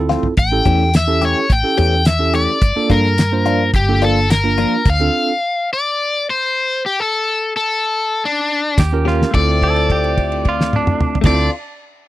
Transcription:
0.00 0.16 D2 loud
0.00 0.32 C4 medium
0.00 0.33 E4 medium
0.00 0.33 F4 medium
0.00 0.33 A4 medium
0.09 0.27 F3 medium
0.09 0.27 A3 medium
0.09 0.27 C4 medium
0.09 0.27 F4 medium
0.09 snare soft
0.23 floor tom medium
0.37 0.60 A1 medium
0.37 0.96 G5 medium
0.37 kick loud
0.37 closed hi-hat medium
0.52 0.89 C#4 medium
0.52 0.89 E4 medium
0.52 0.89 G4 medium
0.52 0.89 A4 medium
0.65 1.33 E2 medium
0.65 0.83 E3 medium
0.65 0.83 A3 medium
0.65 0.83 C#4 medium
0.65 0.83 G4 medium
0.65 kick medium
0.65 closed hi-hat medium
0.94 1.24 E5 medium
0.94 snare loud
0.94 closed hi-hat medium
0.94 tambourine loud
1.07 1.45 C#4 medium
1.07 1.45 E4 medium
1.07 1.45 G4 medium
1.07 1.45 A4 medium
1.22 1.39 E3 medium
1.22 1.39 A3 medium
1.22 1.39 C#4 medium
1.22 1.39 G4 medium
1.22 1.52 C#5 medium
1.22 closed hi-hat medium
1.50 1.61 A1 medium
1.50 1.77 G5 medium
1.50 kick medium
1.50 closed hi-hat medium
1.63 2.01 C#4 medium
1.63 2.01 E4 medium
1.63 2.01 G4 medium
1.63 2.01 A4 medium
1.78 2.46 E2 loud
1.78 1.95 E3 medium
1.78 1.95 A3 medium
1.78 1.95 C#4 medium
1.78 1.95 G4 medium
1.78 2.07 G5 loud
1.78 closed hi-hat medium
2.05 2.35 E5 medium
2.05 snare loud
2.05 closed hi-hat medium
2.05 tambourine loud
2.19 2.56 C#4 medium
2.19 2.57 E4 medium
2.19 2.57 G4 medium
2.19 2.57 A4 medium
2.34 2.51 E3 medium
2.34 2.51 A3 medium
2.34 2.51 C#4 medium
2.34 2.51 G4 medium
2.34 2.92 D5 loud
2.34 closed hi-hat medium
2.62 2.73 G1 medium
2.62 kick loud
2.62 closed hi-hat medium
2.76 3.13 A#3 medium
2.76 3.13 D4 medium
2.76 3.13 F4 medium
2.76 3.13 A4 medium
2.90 3.75 G2 loud
2.90 3.07 F3 medium
2.90 3.07 A#3 medium
2.90 3.07 D4 medium
2.90 3.07 F4 medium
2.90 3.70 A#4 medium
2.90 kick medium
2.90 closed hi-hat medium
3.18 snare loud
3.18 closed hi-hat medium
3.18 tambourine loud
3.32 3.69 A#3 medium
3.32 3.69 D4 medium
3.32 3.69 F4 medium
3.32 3.69 C5 medium
3.46 3.63 F3 medium
3.46 3.63 A#3 medium
3.46 3.63 D4 medium
3.46 3.63 F4 medium
3.46 closed hi-hat medium
3.73 4.64 G1 loud
3.73 4.04 G4 medium
3.73 kick medium
3.73 closed hi-hat medium
3.88 4.25 A#3 medium
3.88 4.25 D4 medium
3.88 4.26 F4 medium
3.88 4.26 A4 medium
4.02 4.20 F3 medium
4.02 4.19 A#3 medium
4.02 4.19 D4 medium
4.02 4.19 F4 medium
4.02 4.29 A4 medium
4.02 closed hi-hat medium
4.30 4.88 A#4 medium
4.30 snare loud
4.30 closed hi-hat medium
4.30 tambourine loud
4.44 4.81 A#3 medium
4.44 4.81 D4 medium
4.44 4.81 F4 medium
4.44 4.81 A#4 medium
4.58 4.76 F3 medium
4.58 4.75 A#3 medium
4.58 4.75 D4 medium
4.58 4.75 F4 medium
4.58 closed hi-hat medium
4.85 5.08 D2 medium
4.85 kick loud
4.85 closed hi-hat medium
4.85 crash medium
4.90 5.69 F5 loud
5.00 5.31 C4 medium
5.00 5.31 D4 medium
5.00 5.31 F4 medium
5.00 5.31 A4 medium
5.73 6.26 D5 loud
6.30 6.82 C5 medium
6.86 7.00 G4 medium
7.00 7.52 A4 loud
7.57 8.22 A4 medium
8.25 8.78 D4 medium
8.78 9.23 D#2 medium
8.78 9.06 G4 medium
8.78 kick medium
8.78 snare loud
8.78 closed hi-hat medium
8.78 tambourine loud
8.92 9.29 C#4 medium
8.92 9.29 F4 medium
8.92 9.30 G4 medium
8.92 9.30 A#4 medium
9.05 9.23 A#3 medium
9.05 9.23 C#4 medium
9.05 9.34 F4 medium
9.05 9.23 G4 medium
9.05 snare medium
9.22 snare medium
9.31 11.14 D2 medium
9.31 11.21 A3 medium
9.31 11.13 C4 medium
9.31 11.14 E4 medium
9.31 kick loud
9.31 crash medium
9.35 11.27 C4 medium
9.35 11.15 F4 medium
9.35 11.15 A4 medium
9.35 11.14 D5 medium
9.62 9.90 A4 medium
9.62 kick medium
9.62 crash soft
9.76 crash soft
9.90 10.45 G4 medium
9.90 kick medium
9.90 crash soft
10.04 crash soft
10.17 kick medium
10.17 crash medium
10.32 crash soft
10.45 10.74 F4 medium
10.45 kick medium
10.45 crash soft
10.61 snare medium
10.73 11.18 D4 loud
10.73 high tom medium
10.87 mid tom loud
11.01 mid tom loud
11.15 floor tom loud
11.21 11.48 D2 medium
11.21 11.48 A3 medium
11.21 11.47 C4 medium
11.21 11.48 E4 medium
11.21 kick loud
11.21 snare loud
11.21 crash loud
11.26 11.51 C4 medium
11.26 11.50 D4 loud
11.26 11.49 F4 medium
11.26 11.49 A4 medium
11.26 11.49 D5 medium
11.33 11.54 F4 medium

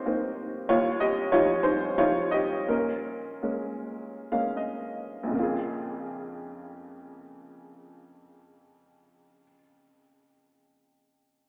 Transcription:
0.00 0.65 C3 medium
0.00 0.06 A#3 soft
0.00 0.06 C4 soft
0.00 0.07 D#4 soft
0.00 0.70 F4 soft
0.00 0.70 G4 medium
0.00 0.32 C5 medium
0.00 0.69 C#5 medium
0.00 0.71 D#5 medium
0.06 0.67 A#3 soft
0.06 0.68 C4 soft
0.06 0.68 D#4 soft
0.69 2.64 D#2 medium
0.69 0.99 F4 medium
0.69 0.99 C#5 medium
1.00 1.31 G4 medium
1.00 1.33 D#5 medium
1.32 1.96 F3 soft
1.32 1.96 G3 soft
1.32 1.63 D#4 soft
1.32 1.63 F4 medium
1.32 1.63 C#5 medium
1.63 1.96 D#4 soft
1.63 1.99 C5 medium
1.97 2.65 F3 soft
1.97 2.66 G3 soft
1.97 2.66 D#4 soft
1.97 2.31 F4 medium
1.97 2.34 C#5 medium
2.31 2.66 G4 soft
2.31 2.68 D#5 medium
2.68 5.29 A#2 soft
2.68 3.42 C#4 soft
2.68 4.28 A#4 soft
3.43 4.29 G#3 soft
3.43 4.29 A#3 soft
3.43 4.29 C#4 soft
4.32 5.30 G#3 soft
4.32 5.30 A#3 soft
4.32 5.30 C#4 soft
4.32 4.55 F5 soft
4.57 5.29 D#5 soft
5.23 9.43 A#1 soft
5.23 9.47 F2 soft
5.32 9.51 C#3 soft
5.32 9.55 A#3 soft
5.39 9.59 F4 soft
5.39 9.62 G#4 soft

